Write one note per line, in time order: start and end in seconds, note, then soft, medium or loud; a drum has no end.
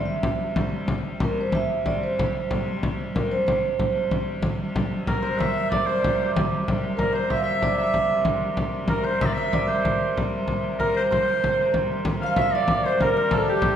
0.00 0.57 C3 medium
0.00 0.57 G3 medium
0.06 0.52 E5 medium
0.06 frame drum soft
0.23 frame drum medium
0.40 frame drum soft
0.56 4.46 C3 medium
0.56 4.46 G3 medium
0.56 frame drum medium
0.72 frame drum soft
0.88 frame drum medium
1.05 frame drum soft
1.20 1.31 A#4 medium
1.20 frame drum medium
1.41 1.54 C5 medium
1.52 1.87 E5 medium
1.52 frame drum medium
1.70 frame drum soft
1.86 2.01 D5 medium
1.86 frame drum medium
2.03 2.48 C5 medium
2.03 frame drum soft
2.19 frame drum medium
2.51 frame drum medium
2.67 frame drum soft
2.83 frame drum medium
3.00 frame drum soft
3.15 3.31 A#4 medium
3.15 frame drum medium
3.31 3.46 C5 medium
3.47 4.07 C5 medium
3.47 frame drum medium
3.79 frame drum medium
4.11 frame drum medium
4.26 frame drum soft
4.42 8.26 C3 medium
4.42 8.27 G3 medium
4.42 frame drum medium
4.60 frame drum soft
4.76 frame drum medium
4.91 frame drum soft
5.07 5.40 A#4 medium
5.07 6.98 A#4 medium
5.07 5.25 A#4 medium
5.07 frame drum medium
5.22 5.87 C5 medium
5.22 5.41 C5 medium
5.39 7.30 E5 medium
5.39 5.69 E5 medium
5.39 5.74 E5 loud
5.39 frame drum medium
5.56 frame drum soft
5.70 5.87 D5 medium
5.70 7.62 D5 medium
5.70 5.88 D5 medium
5.70 frame drum medium
5.86 6.35 C5 medium
5.86 7.12 C5 medium
5.86 6.33 C5 medium
5.86 frame drum soft
6.04 frame drum medium
6.36 frame drum medium
6.53 frame drum soft
6.68 frame drum medium
6.83 frame drum soft
6.97 7.15 A#4 medium
6.97 8.88 A#4 medium
6.97 7.14 A#4 medium
6.97 frame drum medium
7.13 9.03 C5 medium
7.13 7.32 C5 medium
7.30 7.36 E5 medium
7.30 7.42 E5 medium
7.30 frame drum medium
7.37 7.43 F5 medium
7.42 7.77 E5 medium
7.42 7.76 E5 medium
7.42 7.62 E5 loud
7.62 9.53 D5 medium
7.62 7.79 D5 medium
7.62 frame drum medium
7.78 9.22 E5 medium
7.78 8.23 E5 medium
7.78 8.24 E5 medium
7.78 frame drum soft
7.94 frame drum medium
8.25 12.06 C3 medium
8.25 12.06 G3 medium
8.25 frame drum medium
8.42 frame drum soft
8.57 frame drum medium
8.73 frame drum soft
8.88 9.06 A#4 medium
8.88 10.80 A#4 medium
8.88 9.05 A#4 medium
8.88 frame drum medium
9.03 9.67 C5 medium
9.03 9.12 C5 medium
9.03 9.20 C5 medium
9.21 9.27 E5 medium
9.21 9.51 E5 medium
9.21 9.37 E5 medium
9.21 frame drum medium
9.25 9.34 D5 medium
9.33 9.67 E5 medium
9.37 11.67 E5 medium
9.37 frame drum soft
9.53 9.69 D5 medium
9.53 11.99 D5 medium
9.53 frame drum medium
9.68 11.11 C5 medium
9.68 10.12 C5 medium
9.68 10.13 C5 medium
9.68 frame drum soft
9.85 frame drum medium
10.17 frame drum medium
10.33 frame drum soft
10.48 frame drum medium
10.65 frame drum soft
10.79 10.94 A#4 medium
10.79 10.96 A#4 medium
10.79 13.01 A#4 medium
10.79 frame drum medium
10.95 11.09 C5 medium
10.95 11.03 C5 medium
11.11 11.70 C5 medium
11.11 12.86 C5 medium
11.11 11.71 C5 medium
11.11 frame drum medium
11.44 frame drum medium
11.74 frame drum medium
12.05 13.76 C3 medium
12.05 13.76 G3 medium
12.05 frame drum medium
12.21 12.36 F5 medium
12.21 12.45 F5 medium
12.21 frame drum soft
12.26 12.39 F5 loud
12.36 12.55 E5 medium
12.36 13.76 E5 medium
12.36 frame drum medium
12.42 12.48 E5 loud
12.53 12.87 D5 medium
12.53 12.83 D5 medium
12.53 12.70 D5 medium
12.68 13.76 D5 medium
12.68 frame drum medium
12.86 12.95 C5 medium
12.86 13.76 C5 medium
12.86 13.01 C5 loud
12.95 13.03 C5 medium
13.01 13.35 A#4 medium
13.01 13.16 A#4 medium
13.01 13.31 A#4 medium
13.01 frame drum medium
13.17 13.39 A#4 medium
13.17 frame drum soft
13.31 13.76 A4 medium
13.31 13.48 A4 medium
13.31 13.49 A4 medium
13.31 frame drum medium
13.48 13.76 G4 medium
13.62 frame drum medium